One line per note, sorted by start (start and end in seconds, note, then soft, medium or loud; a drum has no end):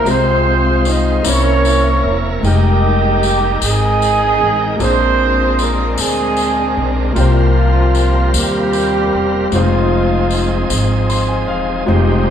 0.03 1.20 C2 medium
0.03 1.20 C3 medium
0.03 1.23 G#3 medium
0.03 1.24 G#3 medium
0.03 1.24 C4 medium
0.03 1.25 F4 medium
0.03 1.25 C5 medium
0.03 tambourine soft
0.09 0.87 C4 medium
0.09 1.22 F4 medium
0.09 1.22 G#4 medium
0.09 0.87 C5 loud
0.85 1.26 D#4 medium
0.85 1.26 D#5 loud
0.85 tambourine medium
1.23 2.00 C2 medium
1.23 2.39 C3 medium
1.23 2.42 A#3 medium
1.23 2.43 A#3 medium
1.23 2.44 C4 medium
1.23 2.43 C#4 medium
1.23 2.43 E4 medium
1.23 2.42 A#4 medium
1.23 2.43 C#5 medium
1.23 tambourine medium
1.29 2.15 C#4 loud
1.29 2.29 E4 medium
1.29 2.29 A#4 medium
1.29 2.15 C#5 loud
1.65 tambourine medium
2.04 2.40 E1 medium
2.40 3.57 F1 loud
2.40 4.74 G#3 medium
2.40 4.76 G#3 medium
2.40 4.75 D#4 medium
2.40 4.76 D#4 medium
2.40 4.76 A#4 medium
2.40 4.76 G5 medium
2.44 3.59 G3 medium
2.44 3.59 A#3 medium
2.44 3.59 D#4 medium
2.44 3.59 G4 medium
2.44 4.78 A#4 medium
2.44 4.76 G5 medium
2.44 tambourine soft
3.23 tambourine medium
3.62 4.36 G#1 medium
3.62 4.80 G#3 loud
3.62 4.78 C4 medium
3.62 4.78 D#4 medium
3.62 4.80 G#4 loud
3.62 tambourine medium
4.02 tambourine medium
4.41 4.77 A1 medium
4.76 5.94 A#1 loud
4.76 5.94 A#2 medium
4.76 7.10 A#3 medium
4.76 7.12 C4 medium
4.76 7.12 D4 medium
4.80 7.13 G#3 medium
4.80 5.60 C4 loud
4.80 7.12 D4 medium
4.80 5.95 F4 medium
4.80 7.13 G#4 medium
4.80 5.95 G#4 medium
4.80 7.12 A#4 medium
4.80 5.60 C5 loud
4.80 7.14 C5 medium
4.80 tambourine soft
5.59 6.00 A#3 medium
5.59 6.00 A#4 medium
5.59 tambourine medium
5.98 6.73 D2 medium
5.98 6.88 G#3 medium
5.98 7.14 C4 medium
5.98 7.14 D4 medium
5.98 6.88 G#4 loud
5.98 tambourine medium
6.37 tambourine medium
6.77 7.13 B1 medium
7.13 8.30 C2 loud
7.13 8.30 C3 medium
7.13 9.48 G3 medium
7.13 9.47 A#3 medium
7.13 9.48 C4 medium
7.13 9.48 F4 medium
7.13 9.48 A#4 medium
7.13 tambourine medium
7.17 8.31 F3 medium
7.17 8.31 A#3 medium
7.17 8.31 F4 medium
7.17 9.49 G4 medium
7.17 9.50 C5 medium
7.95 tambourine medium
8.34 9.09 D#2 medium
8.34 9.54 G3 medium
8.34 9.49 A#3 medium
8.34 9.54 G4 medium
8.34 tambourine medium
8.73 tambourine medium
9.13 9.49 E1 medium
9.49 10.66 F1 loud
9.49 11.84 F3 medium
9.49 11.83 G#3 medium
9.49 11.84 C4 medium
9.49 11.84 D#4 medium
9.49 9.59 G4 medium
9.49 tambourine soft
9.54 11.11 F3 medium
9.54 11.06 G#3 medium
9.54 11.07 C4 medium
9.54 11.85 F4 medium
9.54 11.11 F4 medium
9.54 11.86 C5 medium
9.58 11.87 G#4 medium
10.31 tambourine medium
10.70 11.49 G#1 medium
10.70 tambourine medium
11.09 11.28 C6 medium
11.09 tambourine medium
11.28 11.47 G#5 medium
11.48 11.85 E1 medium
11.48 11.85 F5 medium
11.85 12.30 F1 loud
11.85 12.30 F3 medium
11.85 12.30 G#3 medium
11.85 12.30 C4 medium
11.85 12.30 D#4 medium
11.85 12.30 F4 medium
11.85 12.30 G4 medium
11.85 12.30 C5 medium
11.90 12.30 G3 medium
11.90 12.30 C4 medium
11.90 12.30 D#4 medium
11.90 12.30 G4 medium